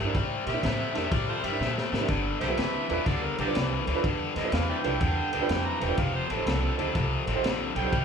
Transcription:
Already playing: overdriven electric guitar C3
0.00 overdriven electric guitar A3
0.04 upright piano D4 E4 G4 A#4
0.14 upright bass A2, overdriven electric guitar C3 G3, kick, snare, ride
0.44 upright bass A#2, overdriven electric guitar C3 G3, upright piano G4 A#4, harmonica E5, snare, ride
0.53 upright piano D4 E4 G4 A#4
0.63 upright bass A2, overdriven electric guitar C3 A3, kick, snare, ride
0.94 upright bass F2, overdriven electric guitar C3 A3, upright piano D4 E4 G4 A#4, snare, ride
1.11 upright bass A2, overdriven electric guitar C3 G3, harmonica D5, kick, snare, ride
1.29 harmonica F4 A4 C5
1.42 upright bass G2, overdriven electric guitar C3 G3, upright piano G4 A#4, harmonica E5, ride
1.52 upright piano D4 E4 G4 A#4
1.60 upright bass A#2, overdriven electric guitar C3 A3, snare
1.78 snare
1.92 upright bass A2, overdriven electric guitar C3 A3, upright piano G4 A#4, snare
2.00 upright piano D4 E4 G4 A#4
2.08 upright bass G1, overdriven electric guitar G2 D3, kick, snare, ride
2.40 upright bass B1, overdriven electric guitar G2 D3, harmonica G4 C5 E5, upright piano A4 B4, snare, ride
2.49 upright piano D4 F4 A4 B4
2.57 upright bass D2, overdriven electric guitar G2 E3, snare, ride
2.89 upright bass E2, overdriven electric guitar G2 E3, upright piano D4 F4 A4 B4, ride
3.06 upright bass D2, overdriven electric guitar G2 D3, harmonica D5, kick, snare, ride
3.24 harmonica A#4
3.37 upright bass B1, overdriven electric guitar G2 D3, harmonica G4 A#4 D5, upright piano A4 B4, ride
3.46 upright piano D4 F4 A4 B4
3.55 upright bass C2, overdriven electric guitar G2 E3, snare, ride
3.85 upright bass D2, overdriven electric guitar G2 E3, upright piano A4 B4, ride
3.94 upright piano D4 F4 A4 B4
4.04 upright bass E2, overdriven electric guitar G2 D3, kick, ride
4.34 upright bass F2, overdriven electric guitar G2 D3, upright piano A4 B4, harmonica D#5, snare, ride
4.43 upright piano D4 F4 A4 B4
4.52 upright bass E2, overdriven electric guitar G2 E3, harmonica F5, snare, ride
4.70 harmonica D5 E5 G5
4.83 upright bass C2, overdriven electric guitar G2 E3, upright piano D4 F4 A4 B4, ride
5.00 upright bass E2, overdriven electric guitar G2 D3, kick, snare, ride
5.32 upright bass D2, overdriven electric guitar G2 D3, upright piano A4 B4, ride
5.41 upright piano D4 F4 A4 B4
5.49 upright bass F2, overdriven electric guitar G2 E3, snare, ride
5.67 harmonica A#5
5.80 upright bass E1, overdriven electric guitar G2 E3, upright piano A4 B4, harmonica G5, ride
5.87 upright piano D4 F4 A4 B4
5.97 upright bass F1, overdriven electric guitar F2 C3, harmonica F5, kick, snare, ride
6.16 harmonica C5
6.28 upright bass A1, overdriven electric guitar F2 C3, upright piano A4 C5, ride
6.32 harmonica A4
6.37 upright piano D#4 G4 A4 C5
6.46 upright bass C2, overdriven electric guitar F2 D3, snare, ride
6.77 upright bass D2, overdriven electric guitar F2 D3, upright piano D#4 G4 A4 C5, ride
6.95 upright bass C2, overdriven electric guitar F2 C3, kick, ride
7.26 upright bass A1, overdriven electric guitar F2 C3, upright piano A4 C5, ride
7.34 upright piano D#4 G4 A4 C5
7.43 upright bass A#1, overdriven electric guitar F2 D3, snare, ride
7.75 upright bass B1, overdriven electric guitar F2 D3, upright piano A4 C5, harmonica G5, ride
7.84 upright piano D#4 G4 A4 C5
7.92 upright bass C2, overdriven electric guitar C3 G3, kick, ride

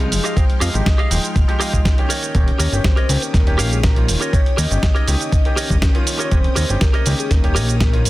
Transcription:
Already playing: analog synth bass C2, string machine G#3 G5 F6, soft synth lead G#4
0.00 grand piano F3 G#3 D#4 F4, muted clean electric guitar stroke, closed hi-hat
0.12 analog synth bass F1, open hi-hat, shaker
0.24 clean electric guitar G4 G#4 D#5 F5, closed hi-hat, shaker
0.36 grand piano F3 G#3 D#4 G5, soft synth lead C5, kick, closed hi-hat, shaker
0.50 closed hi-hat
0.60 analog synth bass F2, clean electric guitar G4 G#4 D#5 F5, soft synth lead D#5, open hi-hat, shaker
0.74 analog synth bass G#1, grand piano F3 G#3 D#4 G4, closed hi-hat, shaker
0.86 kick, snare, closed hi-hat, shaker
0.98 clean electric guitar G4 G#4 D#5 F5, closed hi-hat
1.11 analog synth bass D#1, grand piano F3 G#3 D#4 G5, open hi-hat, shaker
1.24 closed hi-hat, shaker
1.35 analog synth bass D#1, muted clean electric guitar stroke, kick, closed hi-hat, shaker
1.48 grand piano F3 G#3 D#4 G4, closed hi-hat
1.60 grand piano F3 G#3 D#4 G5, clean electric guitar G4 G#4 D#5 F5, open hi-hat, shaker
1.73 kick, closed hi-hat, shaker
1.85 kick, snare, closed hi-hat, shaker
1.97 grand piano D#3 A#3 C#4 G4, muted clean electric guitar stroke, closed hi-hat
2.09 string machine C#4 D#6, clean electric guitar G4 A#4 C#5 D#5, open hi-hat, shaker
2.23 closed hi-hat, shaker
2.35 analog synth bass D#1, grand piano D#3 A#3 C#4 G4, soft synth lead C#5, kick, closed hi-hat, shaker
2.48 closed hi-hat
2.58 analog synth bass D#2, clean electric guitar G4 A#4 C#5 D#5, open hi-hat, shaker
2.72 analog synth bass G1, grand piano D#3 A#3 C#4 G4, closed hi-hat, shaker
2.84 soft synth lead C5, muted clean electric guitar stroke, kick, snare, closed hi-hat, shaker
2.96 clean electric guitar G4 A#4 C#5 D#5, closed hi-hat
3.09 analog synth bass C#2, grand piano D#3 A#3 C#4 G4, open hi-hat, shaker
3.22 soft synth lead A#4, closed hi-hat, shaker
3.33 analog synth bass D#1, muted clean electric guitar stroke, kick, snare, closed hi-hat, shaker
3.46 grand piano D#3 A#3 C#4 G4, closed hi-hat
3.58 analog synth bass A#1, clean electric guitar G4 A#4 C#5 F5, open hi-hat, shaker
3.72 soft synth lead G#4, closed hi-hat, shaker
3.83 soft synth lead A#4, kick, snare, closed hi-hat, shaker
3.96 grand piano D#3 A#3 C#4 F4, muted clean electric guitar stroke, closed hi-hat
4.08 analog synth bass D#1, open hi-hat, shaker
4.20 clean electric guitar G4 A#4 C#5 D#5, closed hi-hat, shaker
4.33 grand piano D#3 A#3 C#4 G4, soft synth lead C#5, kick, closed hi-hat, shaker
4.46 closed hi-hat
4.57 analog synth bass D#2, clean electric guitar G4 A#4 C#5 D#5, soft synth lead D#5, open hi-hat, shaker
4.70 analog synth bass G1, grand piano D#3 A#3 C#4 G4, closed hi-hat, shaker
4.82 muted clean electric guitar stroke, kick, snare, closed hi-hat, shaker
4.95 clean electric guitar G4 A#4 C#5 D#5, closed hi-hat
5.07 analog synth bass C#2, grand piano D#3 A#3 C#4 G4, open hi-hat, shaker
5.21 closed hi-hat, shaker
5.31 muted clean electric guitar stroke, kick, closed hi-hat, shaker
5.45 grand piano D#3 A#3 C#4 G4, closed hi-hat
5.56 clean electric guitar G4 A#4 C#5 D#5, open hi-hat, shaker
5.70 analog synth bass G1, kick, closed hi-hat, shaker
5.82 kick, snare, closed hi-hat, shaker
5.94 grand piano D#3 A#3 C#4 F4, muted clean electric guitar stroke, closed hi-hat
6.07 open hi-hat, shaker
6.19 clean electric guitar G4 A#4 C#5 D#5, closed hi-hat, shaker
6.25 soft synth lead C#5
6.31 analog synth bass D#1, grand piano D#3 A#3 C#4 G4, soft synth lead C5, kick, closed hi-hat, shaker
6.44 closed hi-hat
6.55 analog synth bass D#2, clean electric guitar G4 A#4 C#5 D#5, open hi-hat, shaker
6.69 analog synth bass G1, grand piano D#3 A#3 C#4 G4, closed hi-hat, shaker
6.81 soft synth lead A#4, muted clean electric guitar stroke, kick, snare, closed hi-hat, shaker
6.93 clean electric guitar G4 A#4 C#5 D#5, closed hi-hat
7.06 analog synth bass C#2, grand piano D#3 A#3 C#4 G4, open hi-hat, shaker
7.19 soft synth lead G#4, closed hi-hat, shaker
7.30 analog synth bass D#1, soft synth lead A#4, muted clean electric guitar stroke, kick, snare, closed hi-hat, shaker
7.43 grand piano D#3 A#3 C#4 G4, closed hi-hat
7.55 analog synth bass A#1, clean electric guitar G4 A#4 C#5 D#5, open hi-hat, shaker
7.69 closed hi-hat, shaker
7.80 soft synth lead A#4, kick, snare, closed hi-hat, shaker
7.93 grand piano D#3 A#3 C#4 F4, muted clean electric guitar stroke, closed hi-hat
8.05 analog synth bass D#1, open hi-hat, shaker

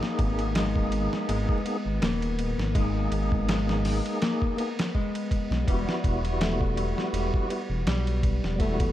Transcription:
Already playing: nylon-string guitar A#3, tonewheel organ A#3 D#4 G#4, synth drone B3
0.03 snare
0.19 detuned saw bass G#1, kick, ride
0.39 ride
0.55 nylon-string guitar G#3, snare, ride
0.76 kick
0.92 ride
1.13 snare
1.29 detuned saw bass G#1, nylon-string guitar G#3, ride
1.49 kick
1.64 tonewheel organ A#3 B3 D#4 G#4, ride
1.85 detuned saw bass G#1
2.02 detuned saw bass D#1, nylon-string guitar A#3, snare, ride
2.22 ride
2.39 ride
2.58 detuned saw bass G#1, snare
2.73 nylon-string guitar G#3, tonewheel organ A#3, kick, ride
2.78 tonewheel organ D#4 G#4
3.11 detuned saw bass G#1, ride
3.32 kick
3.48 nylon-string guitar G#3, snare, ride
3.69 snare
3.85 snare, open hi-hat
4.06 ride
4.22 nylon-string guitar A#3, snare, ride
4.42 kick
4.57 tonewheel organ A#3 B3 D#4 G#4, ride
4.79 snare, ride
4.95 nylon-string guitar G#3, kick
5.15 ride
5.31 kick, ride
5.50 detuned saw bass B1, snare
5.64 detuned saw bass E1, tonewheel organ G3 B3, nylon-string guitar G3, kick, ride
5.69 tonewheel organ E4 F#4
5.89 snare
6.04 detuned saw bass E1, kick, ride
6.25 ride
6.41 nylon-string guitar A3, snare, ride
6.61 kick
6.77 ride
6.98 snare
7.13 detuned saw bass E1, nylon-string guitar G3, ride
7.34 kick
7.49 tonewheel organ G3 B3 E4 F#4, ride
7.69 detuned saw bass E1
7.86 detuned saw bass B1, nylon-string guitar G3, snare, ride
8.07 ride
8.23 kick, ride
8.44 detuned saw bass E1, snare
8.56 tonewheel organ G3 B3, kick, ride
8.60 nylon-string guitar A3, tonewheel organ E4 F#4
8.80 kick, ride

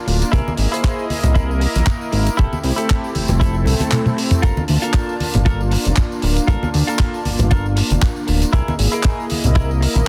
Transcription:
0.06 analog synth bass D1, analog synth pad A#3 D4 F4 A#4, muted clean electric guitar stroke, open hi-hat
0.22 closed hi-hat, tambourine
0.32 analog synth bass C2, analog synth pad A#3 E4 G#4 D#5, clean electric guitar E4 G#4 A#4, kick, closed hi-hat, tambourine
0.48 tambourine, high conga
0.57 analog synth bass G#1, open hi-hat
0.72 clean electric guitar E4 G#4 C5, closed hi-hat, tambourine
0.84 kick, clap, closed hi-hat, tambourine
0.99 tambourine
1.09 analog synth pad A#3 E4 A#4 D#5, open hi-hat, high conga
1.23 analog synth bass C2, closed hi-hat, tambourine, low conga
1.35 clean electric guitar E4 G#4 A#4, kick, closed hi-hat, tambourine
1.51 tambourine
1.60 muted clean electric guitar stroke, open hi-hat
1.74 analog synth bass A#1, muted clean electric guitar stroke, closed hi-hat, tambourine, high conga
1.86 kick, clap, closed hi-hat, tambourine
2.01 tambourine
2.12 analog synth bass G#1, analog synth pad A#3 D#4 E4 A#4, muted clean electric guitar stroke, open hi-hat
2.27 closed hi-hat, tambourine
2.37 analog synth bass F1, analog synth pad A3 C4 E4 G4, clean electric guitar E4 G4 A4, kick, closed hi-hat, tambourine
2.53 tambourine, high conga
2.64 analog synth bass C2, open hi-hat
2.76 clean electric guitar E4 G4 A4, closed hi-hat, tambourine
2.89 kick, clap, closed hi-hat, tambourine
3.04 tambourine
3.15 analog synth bass F1, analog synth pad A3 C4 E4 A4, open hi-hat, high conga
3.28 analog synth bass F1, closed hi-hat, tambourine, low conga
3.40 clean electric guitar E4 G4 A4, kick, closed hi-hat, tambourine
3.55 tambourine
3.65 analog synth bass C2, muted clean electric guitar stroke, open hi-hat, low conga
3.79 muted clean electric guitar stroke, closed hi-hat, tambourine, high conga
3.91 clap, closed hi-hat, high tom, tambourine
4.06 analog synth pad A3 C4 E4 G4, high tom, tambourine
4.17 muted clean electric guitar stroke, open hi-hat
4.31 closed hi-hat, mid tom, tambourine
4.42 analog synth bass G1, analog synth pad A#3 D4 F4 A5, clean electric guitar F4 A4 A#4, kick, closed hi-hat, tambourine
4.57 tambourine, high conga
4.68 analog synth bass D2, open hi-hat
4.82 clean electric guitar F4 A4 A#4, closed hi-hat, tambourine
4.94 kick, clap, tambourine
5.09 tambourine
5.20 analog synth pad A#3 D4 F4, open hi-hat, high conga
5.34 analog synth bass G1, closed hi-hat, tambourine, low conga
5.45 clean electric guitar F4 A4 A#4, kick, closed hi-hat, tambourine
5.60 tambourine
5.71 muted clean electric guitar stroke, open hi-hat
5.85 analog synth bass F1, muted clean electric guitar stroke, closed hi-hat, tambourine, high conga
5.96 kick, clap, closed hi-hat, tambourine
6.12 tambourine
6.22 analog synth bass D1, analog synth pad A#3 D4 F4 A#4, muted clean electric guitar stroke, open hi-hat
6.37 closed hi-hat, tambourine
6.47 analog synth bass G1, analog synth pad A#3 D4 F4 A5, clean electric guitar F4 A4 A#4, kick, closed hi-hat
6.63 tambourine, high conga
6.74 analog synth bass D2, open hi-hat
6.87 clean electric guitar F4 A4 A#4, closed hi-hat, tambourine
6.99 kick, clap, closed hi-hat, tambourine
7.14 tambourine
7.24 analog synth bass G1, analog synth pad A#3 D4 F4, open hi-hat, high conga
7.39 analog synth bass G1, closed hi-hat, tambourine, low conga
7.51 clean electric guitar F4 A4 A#4, kick, closed hi-hat, tambourine
7.65 tambourine
7.76 muted clean electric guitar stroke, open hi-hat
7.90 analog synth bass F1, muted clean electric guitar stroke, closed hi-hat, tambourine, high conga
8.02 kick, clap, closed hi-hat, tambourine
8.16 tambourine
8.27 analog synth bass D1, analog synth pad A#3 D4 F4 A#4, muted clean electric guitar stroke, open hi-hat
8.42 closed hi-hat, tambourine
8.52 analog synth bass C2, analog synth pad A#3 E4 G#4 D#5, clean electric guitar E4 G#4 A#4, kick, closed hi-hat
8.68 tambourine, high conga
8.79 analog synth bass G#1, open hi-hat
8.92 clean electric guitar E4 G#4 A#4, closed hi-hat, tambourine
9.03 kick, clap, closed hi-hat, tambourine
9.20 tambourine
9.29 analog synth pad A#3 E4 A#4 D#5, open hi-hat, high conga
9.44 analog synth bass C2, closed hi-hat, tambourine, low conga
9.55 clean electric guitar E4 G#4 A#4, kick, closed hi-hat, tambourine
9.71 tambourine
9.81 muted clean electric guitar stroke, open hi-hat
9.95 analog synth bass A#1, muted clean electric guitar stroke, closed hi-hat, tambourine, high conga

